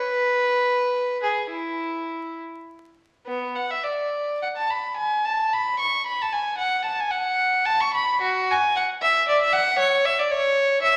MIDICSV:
0, 0, Header, 1, 2, 480
1, 0, Start_track
1, 0, Tempo, 573066
1, 2231, Tempo, 598802
1, 2724, Time_signature, 12, 3, 24, 8
1, 3191, Tempo, 557621
1, 4151, Tempo, 541028
1, 7511, Tempo, 520382
1, 9544, End_track
2, 0, Start_track
2, 0, Title_t, "Violin"
2, 0, Program_c, 0, 40
2, 0, Note_on_c, 0, 71, 106
2, 1007, Note_off_c, 0, 71, 0
2, 1033, Note_on_c, 0, 68, 67
2, 1262, Note_on_c, 0, 64, 62
2, 1266, Note_off_c, 0, 68, 0
2, 1971, Note_off_c, 0, 64, 0
2, 2718, Note_on_c, 0, 59, 77
2, 2945, Note_on_c, 0, 78, 66
2, 2955, Note_off_c, 0, 59, 0
2, 3067, Note_on_c, 0, 76, 74
2, 3069, Note_off_c, 0, 78, 0
2, 3171, Note_on_c, 0, 74, 68
2, 3186, Note_off_c, 0, 76, 0
2, 3664, Note_off_c, 0, 74, 0
2, 3673, Note_on_c, 0, 78, 76
2, 3722, Note_off_c, 0, 78, 0
2, 3798, Note_on_c, 0, 81, 69
2, 3914, Note_off_c, 0, 81, 0
2, 3914, Note_on_c, 0, 83, 63
2, 4144, Note_on_c, 0, 80, 78
2, 4151, Note_off_c, 0, 83, 0
2, 4386, Note_off_c, 0, 80, 0
2, 4391, Note_on_c, 0, 81, 76
2, 4636, Note_off_c, 0, 81, 0
2, 4642, Note_on_c, 0, 83, 80
2, 4877, Note_on_c, 0, 85, 83
2, 4878, Note_off_c, 0, 83, 0
2, 5105, Note_off_c, 0, 85, 0
2, 5117, Note_on_c, 0, 83, 74
2, 5227, Note_off_c, 0, 83, 0
2, 5252, Note_on_c, 0, 81, 76
2, 5348, Note_on_c, 0, 80, 78
2, 5356, Note_off_c, 0, 81, 0
2, 5574, Note_on_c, 0, 78, 89
2, 5584, Note_off_c, 0, 80, 0
2, 5814, Note_on_c, 0, 81, 74
2, 5817, Note_off_c, 0, 78, 0
2, 5940, Note_off_c, 0, 81, 0
2, 5947, Note_on_c, 0, 80, 82
2, 6044, Note_on_c, 0, 78, 88
2, 6070, Note_off_c, 0, 80, 0
2, 6528, Note_on_c, 0, 81, 97
2, 6538, Note_off_c, 0, 78, 0
2, 6659, Note_on_c, 0, 85, 90
2, 6660, Note_off_c, 0, 81, 0
2, 6780, Note_on_c, 0, 83, 95
2, 6785, Note_off_c, 0, 85, 0
2, 7022, Note_off_c, 0, 83, 0
2, 7027, Note_on_c, 0, 66, 91
2, 7266, Note_off_c, 0, 66, 0
2, 7287, Note_on_c, 0, 80, 95
2, 7512, Note_on_c, 0, 78, 82
2, 7517, Note_off_c, 0, 80, 0
2, 7586, Note_off_c, 0, 78, 0
2, 7748, Note_on_c, 0, 76, 106
2, 7984, Note_off_c, 0, 76, 0
2, 7993, Note_on_c, 0, 74, 88
2, 8109, Note_off_c, 0, 74, 0
2, 8116, Note_on_c, 0, 76, 100
2, 8215, Note_on_c, 0, 78, 109
2, 8231, Note_off_c, 0, 76, 0
2, 8456, Note_on_c, 0, 73, 110
2, 8465, Note_off_c, 0, 78, 0
2, 8701, Note_off_c, 0, 73, 0
2, 8701, Note_on_c, 0, 76, 99
2, 8827, Note_on_c, 0, 74, 90
2, 8828, Note_off_c, 0, 76, 0
2, 8936, Note_on_c, 0, 73, 107
2, 8950, Note_off_c, 0, 74, 0
2, 9414, Note_on_c, 0, 76, 112
2, 9422, Note_off_c, 0, 73, 0
2, 9538, Note_off_c, 0, 76, 0
2, 9544, End_track
0, 0, End_of_file